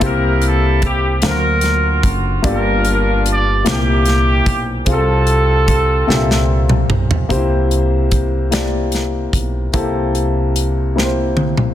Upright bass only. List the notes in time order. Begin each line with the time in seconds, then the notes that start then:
0.01 C2
1.22 D2
2.03 F#1
2.44 G1
3.65 C2
4.46 B1
4.87 C2
6.08 C2
6.89 B1
7.30 C2
9.33 B1
9.73 C2